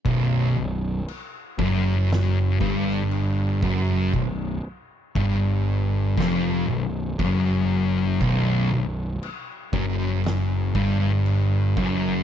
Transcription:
0.05 picked electric bass B0, distorted electric guitar B1, kick, crash
0.57 picked electric bass B0, distorted electric guitar B1
1.08 crash
1.58 picked electric bass F#1, distorted electric guitar F#2, kick
2.10 snare, crash
2.60 picked electric bass G1, distorted electric guitar G2, kick
2.89 snare
3.11 crash
3.62 picked electric bass F#1, distorted electric guitar F#2, kick
4.13 picked electric bass B0, distorted electric guitar B1, kick, crash
5.15 picked electric bass G1, distorted electric guitar G2, kick, crash
6.17 picked electric bass F1, distorted electric guitar F2, kick, snare, crash
6.68 picked electric bass B0, distorted electric guitar B1
7.19 picked electric bass F#1, distorted electric guitar F#2, kick, crash
8.21 picked electric bass B0, distorted electric guitar B1, kick, crash
8.71 picked electric bass B0, distorted electric guitar B1
9.23 crash
9.73 picked electric bass F#1, distorted electric guitar F#2, kick
10.24 snare, crash
10.75 picked electric bass G1, distorted electric guitar G2, kick
11.26 crash
11.77 picked electric bass F#1, distorted electric guitar F#2, kick

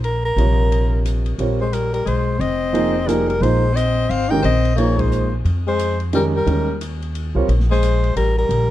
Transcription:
Already playing: upright bass A#1
0.04 soprano saxophone A#4, ride
0.25 soprano saxophone A#4
0.36 upright bass A#1, grand piano C3 G3 F4 A#4 C#5, ride
0.72 ride
1.05 hi-hat pedal, ride
1.26 ride
1.38 upright bass A#1, grand piano G3 C4 F4 A#4 C#5, ride
1.61 tenor saxophone G#3, soprano saxophone C5
1.73 tenor saxophone G3, soprano saxophone A#4, hi-hat pedal, ride
1.93 tenor saxophone G3, soprano saxophone A#4, ride
2.06 upright bass B1, tenor saxophone G#3, soprano saxophone C5, ride
2.39 upright bass F1, tenor saxophone C4, soprano saxophone D#5, ride
2.73 grand piano F3 A#3 D#4 G#4 C5, ride
3.06 grand piano F3 A#3 D#4 G#4 A#4, tenor saxophone G3, soprano saxophone A#4, hi-hat pedal, ride
3.27 tenor saxophone G3, soprano saxophone A#4, ride
3.39 upright bass A#1, grand piano F3 A#3 D#4 G#4 C5, tenor saxophone G#3, soprano saxophone C5, ride
3.73 tenor saxophone C4, soprano saxophone D#5, hi-hat pedal, ride
4.09 upright bass G#1, tenor saxophone C4, soprano saxophone F5, ride
4.29 grand piano D#3 G#3 C#4 G4 A#4, tenor saxophone D#4, soprano saxophone G5
4.43 upright bass A#1, tenor saxophone C4, soprano saxophone D#5, ride
4.65 ride
4.76 grand piano F3 A#3 D#4 G#4 C5, tenor saxophone A#3, soprano saxophone C#5, ride
4.97 tenor saxophone G#3, soprano saxophone C5, kick, ride
5.12 hi-hat pedal
5.45 upright bass F2, ride
5.67 tenor saxophone G#3, soprano saxophone C5
5.79 hi-hat pedal, ride
6.00 ride
6.13 grand piano D#3 G#3 C#4 G4 A#4, tenor saxophone G3, soprano saxophone A#4, ride
6.36 tenor saxophone G3, soprano saxophone A#4
6.46 upright bass D#2, grand piano D#3 G#3 C#4 G4 A#4, ride
6.81 hi-hat pedal, ride
7.02 ride
7.15 ride
7.35 upright bass C2, grand piano G3 C4 F4 A#4 C#5
7.48 upright bass A#1, ride
7.60 snare
7.71 tenor saxophone G#3, soprano saxophone C5, snare
7.83 hi-hat pedal, ride
8.04 ride
8.16 upright bass A1, tenor saxophone G3, soprano saxophone A#4, ride
8.38 tenor saxophone G3, soprano saxophone A#4
8.49 upright bass A#1, ride

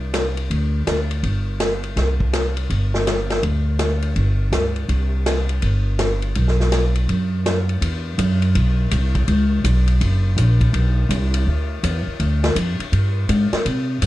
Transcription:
Already playing: upright bass C2
0.14 snare, hi-hat pedal, ride
0.37 ride
0.50 upright bass D2, ride
0.87 upright bass D2, snare, hi-hat pedal, ride
1.11 ride
1.23 upright bass G1, ride
1.60 snare, hi-hat pedal, ride
1.83 ride
1.96 upright bass C2, snare, ride
2.20 kick
2.33 snare, hi-hat pedal, ride
2.57 ride
2.70 upright bass G1, ride
2.94 snare
3.07 snare, hi-hat pedal, ride
3.30 snare, ride
3.43 upright bass D2, ride
3.79 snare, hi-hat pedal, ride
4.02 ride
4.16 upright bass G1, ride
4.52 upright bass C#2, snare, hi-hat pedal, ride
4.76 ride
4.88 upright bass C2, ride
5.26 snare, hi-hat pedal, ride
5.49 ride
5.62 upright bass G1, ride
5.99 snare, hi-hat pedal, ride
6.22 ride
6.35 upright bass B1, ride
6.48 snare
6.60 snare
6.72 snare, hi-hat pedal, ride
6.95 ride
7.08 upright bass F#2, ride
7.46 snare, hi-hat pedal, ride
7.69 ride
7.81 upright bass E2, ride
8.18 upright bass F#2, hi-hat pedal, ride
8.42 ride
8.55 upright bass B1, ride
8.91 upright bass C2, hi-hat pedal, ride
9.15 kick, ride
9.28 upright bass C#2, ride
9.64 upright bass B1, hi-hat pedal, ride
9.87 ride
10.01 upright bass F#1, ride
10.37 upright bass A#1, hi-hat pedal, ride
10.61 kick, ride
10.73 upright bass B1, ride
11.09 upright bass C2, hi-hat pedal, ride
11.34 ride
11.47 upright bass D2
11.83 upright bass E2, hi-hat pedal, ride
12.07 muted upright bass stroke
12.20 upright bass D2, ride
12.44 snare, ride
12.55 upright bass F2, hi-hat pedal, ride
12.79 muted upright bass stroke, ride
12.92 upright bass G2, ride
13.29 upright bass G#2, hi-hat pedal, ride
13.52 muted upright bass stroke, snare, ride
13.65 upright bass C3, ride
14.02 upright bass G2, hi-hat pedal, ride

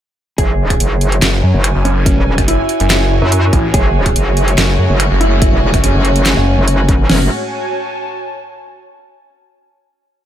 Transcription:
0.38 wobble bass F#1, analog synth pad F#4, clean electric guitar G#4, kick, closed hi-hat
0.61 analog synth pad C#5
0.70 finger snap, kick, closed hi-hat
0.80 wobble bass F#1, analog synth pad G#5, closed hi-hat
1.01 closed hi-hat
1.12 closed hi-hat
1.22 detuned saw bass F#1, snare, clap, closed hi-hat
1.43 detuned saw bass F#2
1.54 wobble bass F#1
1.64 finger snap, closed hi-hat
1.75 detuned saw bass F#1
1.85 clean electric guitar C#4, closed hi-hat
2.06 kick, closed hi-hat
2.17 wobble bass E1
2.38 detuned saw bass F#1, finger snap, kick, closed hi-hat
2.48 clean electric guitar E4, closed hi-hat
2.69 closed hi-hat
2.80 detuned saw bass F#1, closed hi-hat
2.90 finger snap, snare, clap, closed hi-hat
3.22 wobble bass F#2
3.32 closed hi-hat
3.53 detuned saw bass A1, kick, closed hi-hat
3.74 wobble bass F#1, string section C#3 G#3 A3 F#4, clean electric guitar G#4, kick, closed hi-hat
4.06 finger snap, kick, closed hi-hat
4.16 wobble bass F#1, closed hi-hat
4.37 closed hi-hat
4.48 closed hi-hat
4.58 detuned saw bass F#1, snare, clap, closed hi-hat
4.76 detuned saw bass F#2, analog synth pad G#5
4.90 wobble bass F#1
5.00 finger snap, closed hi-hat
5.11 detuned saw bass F#1
5.21 clean electric guitar E4, closed hi-hat
5.42 kick, closed hi-hat
5.53 wobble bass E1
5.74 detuned saw bass F#1, finger snap, kick, closed hi-hat
5.84 clean electric guitar C#4, closed hi-hat
5.95 wobble bass F#1
6.05 closed hi-hat
6.16 closed hi-hat
6.26 finger snap, snare, clap, closed hi-hat
6.37 detuned saw bass F#1
6.58 wobble bass F#1
6.68 closed hi-hat
6.89 kick, closed hi-hat
7.09 wobble bass F#1, string section A2 G#3 C#4 F#4, clean electric guitar C#4, analog synth pad F#4, snare, crash
7.16 analog synth pad C#5
7.23 analog synth pad G#5
7.29 analog synth pad A5

